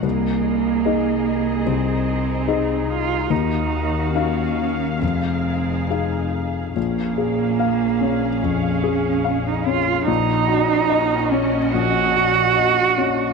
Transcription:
0.02 grand piano C2, double bass C2, cello A#3, string section D#4 G#4 D#5
0.85 grand piano D#4 G#4 D#5
1.66 grand piano C2, cello C4
2.48 grand piano D#4 G#4 D#5
2.90 cello F4
3.30 grand piano D#2, double bass D#2, cello D#4, string section F#4 F5
4.14 cello C#4, grand piano D#4 F#4 F5
5.01 double bass F1, grand piano F2, cello C4, string section D#4 G#4
5.90 grand piano D#4 G#4 F5
6.75 double bass A#1, grand piano A#1, cello A#3, string section C#4 G#4 F5
7.18 grand piano G#4
7.59 grand piano F5
8.01 grand piano C#4
8.43 grand piano F2, cello C#4
8.84 grand piano G#4
9.24 grand piano F5
9.47 cello D#4
9.66 grand piano C#4, cello F4
10.06 grand piano A#1, double bass A#1, string section C#4 F#4 D#5, cello D#4
10.48 grand piano F#4
10.90 grand piano D#5
11.31 cello C#4, grand piano C#4
11.73 grand piano A#1, cello F#4
12.16 grand piano F#4
12.57 grand piano D#5
12.98 grand piano C#4

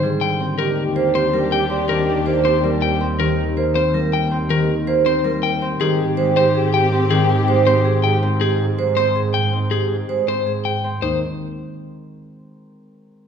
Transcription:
Already playing: double bass section G#2, harp D3 D#3 G#3 C4
0.03 harp G3, vibraphone G#4
0.21 harp D3, clean electric guitar G5
0.40 harp C4
0.58 double bass section D#2, harp D#3, string section D4 G4, alto flute G4, vibraphone G4, clean electric guitar A#4
0.77 alto flute G4
0.96 harp A#3, alto flute G4, vibraphone C5
1.14 harp C4, alto flute G4, clean electric guitar C5
1.33 harp G3, alto flute G4, vibraphone A#4
1.52 alto flute G4, clean electric guitar G5
1.70 harp C4, alto flute G4
1.88 harp D#3, vibraphone G4, alto flute G4, clean electric guitar A#4
2.08 alto flute G4
2.26 harp A#3, alto flute G4, vibraphone C5
2.45 harp C4, alto flute G4, clean electric guitar C5
2.63 harp G3, alto flute G4, vibraphone A#4
2.82 alto flute G4, clean electric guitar G5
3.01 harp C4
3.19 harp D#3, vibraphone G4, clean electric guitar A#4
3.57 harp A#3, vibraphone C5
3.75 harp C4, clean electric guitar C5
3.94 harp G3, vibraphone A#4
4.13 clean electric guitar G5
4.31 harp C4
4.50 harp D#3, vibraphone G4, clean electric guitar A#4
4.87 harp A#3, vibraphone C5
5.05 harp C4, clean electric guitar C5
5.24 harp G3, vibraphone A#4
5.43 clean electric guitar G5
5.62 harp C4
5.80 double bass section G#2, harp D#3, string section C4 G4, vibraphone G4, alto flute G4, clean electric guitar G#4
6.00 alto flute G4
6.17 harp G#3, alto flute G4, vibraphone C5
6.36 harp C4, alto flute G4, clean electric guitar C5
6.55 alto flute G4, vibraphone G#4
6.74 alto flute G4, clean electric guitar G5
6.92 harp C4, alto flute G4
7.10 harp D#3, vibraphone G4, alto flute G4, clean electric guitar G#4
7.29 alto flute G4
7.48 harp G#3, alto flute G4, vibraphone C5
7.66 harp C4, alto flute G4, clean electric guitar C5
7.85 alto flute G4, vibraphone G#4
8.04 alto flute G4, clean electric guitar G5
8.22 harp C4
8.41 vibraphone G4, clean electric guitar G#4
8.78 harp G#3, vibraphone C5
8.97 harp C4, clean electric guitar C5
9.16 vibraphone G#4
9.34 clean electric guitar G5
9.53 harp C4
9.71 vibraphone G4, clean electric guitar G#4
10.09 harp G#3, vibraphone C5
10.27 harp C4, clean electric guitar C5
10.47 vibraphone G#4
10.65 clean electric guitar G5
10.84 harp C4
11.02 double bass section D#2, harp D#3, vibraphone D#4, clean electric guitar C5

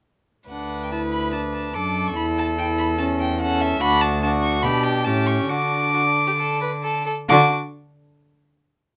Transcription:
0.49 cello D2, viola D4, violin B4 F#5
0.83 violin G5
0.91 viola E4, violin A5
1.12 violin B5
1.32 viola D4, violin A5
1.54 violin A5
1.74 cello F#2, viola D4, violin A4 D6
2.07 violin C#6
2.16 cello E2, viola E4, violin B5
2.38 violin A5
2.58 viola E4, violin G5
2.78 violin B5
2.99 viola C#4, violin A5
3.20 violin G5
3.40 viola C#4, violin A4 F#5
3.61 violin E5
3.81 cello D2, viola D4, violin F#4 B5
4.01 violin A5
4.22 viola D4, violin F#4 A5
4.43 violin C#6
4.63 cello B2, viola D4, violin G4 B5
4.83 violin G5
5.05 cello A2, viola C#4, violin G4 A5
5.27 violin C#6
5.49 cello D3, viola D4, violin F#4 D6
5.93 violin F#4
6.27 violin G4
6.38 violin A4
6.61 violin B4
6.83 violin A4
7.06 violin A4
7.28 cello D3, viola D4, violin F#4 D6

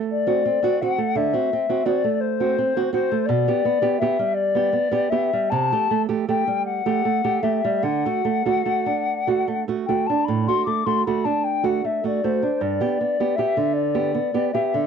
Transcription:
Already playing: nylon-string guitar A3
0.11 flute D5
0.27 nylon-string guitar C4 F#4
0.46 nylon-string guitar C4
0.63 nylon-string guitar C4 F#4
0.81 nylon-string guitar C4 F#4, flute F#5
0.98 nylon-string guitar A3
1.15 nylon-string guitar D3, flute E5
1.33 nylon-string guitar C4 F#4
1.53 nylon-string guitar C4
1.69 nylon-string guitar C4 F#4
1.85 nylon-string guitar C4 F#4, flute D5
2.04 nylon-string guitar A3
2.20 flute C5
2.40 nylon-string guitar C4 F#4
2.58 nylon-string guitar C4
2.77 nylon-string guitar C4 F#4
2.93 nylon-string guitar C4 F#4, flute C5
3.12 nylon-string guitar A3
3.26 nylon-string guitar B2, flute D5
3.48 nylon-string guitar B3 G4
3.65 nylon-string guitar B3
3.82 nylon-string guitar B3 G4
3.99 nylon-string guitar B3 G4, flute E5
4.19 nylon-string guitar G3
4.34 flute D5
4.55 nylon-string guitar B3 G4
4.73 nylon-string guitar B3
4.92 nylon-string guitar B3 G4
5.10 nylon-string guitar B3 G4, flute E5
5.33 nylon-string guitar G3
5.50 nylon-string guitar C3, flute A5
5.72 nylon-string guitar A3 G4
5.91 nylon-string guitar A3
6.09 nylon-string guitar A3 G4
6.28 nylon-string guitar A3 G4, flute G5
6.47 nylon-string guitar G3
6.65 flute F#5
6.86 nylon-string guitar A3 G4
7.05 nylon-string guitar A3
7.24 nylon-string guitar A3 G4
7.43 nylon-string guitar A3 G4, flute E5
7.64 nylon-string guitar G3
7.83 nylon-string guitar D3, flute F#5
8.05 nylon-string guitar A3 F#4
8.25 nylon-string guitar A3
8.45 nylon-string guitar A3 F#4
8.65 nylon-string guitar A3 F#4
8.86 nylon-string guitar D4
9.27 nylon-string guitar A3 F#4
9.48 nylon-string guitar A3
9.68 nylon-string guitar A3 F#4
9.86 nylon-string guitar A3 F#4, flute G5
10.06 nylon-string guitar D4, flute A5
10.25 nylon-string guitar A2, flute B5
10.47 nylon-string guitar A3 F#4, flute C6
10.65 nylon-string guitar A3, flute D6
10.86 nylon-string guitar A3 F#4, flute C6
11.05 nylon-string guitar A3 F#4, flute B5
11.24 nylon-string guitar D4, flute A5
11.44 flute G5
11.63 nylon-string guitar A3 F#4, flute F#5
11.84 nylon-string guitar A3, flute E5
12.04 nylon-string guitar A3 F#4, flute D5
12.24 nylon-string guitar A3 F#4, flute C5
12.43 nylon-string guitar D4
12.61 nylon-string guitar G2, flute D5
12.80 nylon-string guitar B3 G4
13.01 nylon-string guitar B3
13.20 nylon-string guitar B3 G4
13.36 nylon-string guitar B3 G4, flute E5
13.57 nylon-string guitar D3
13.73 flute D5
13.94 nylon-string guitar B3 G4
14.15 nylon-string guitar B3
14.34 nylon-string guitar B3 G4
14.54 nylon-string guitar B3 G4, flute E5
14.74 nylon-string guitar D3

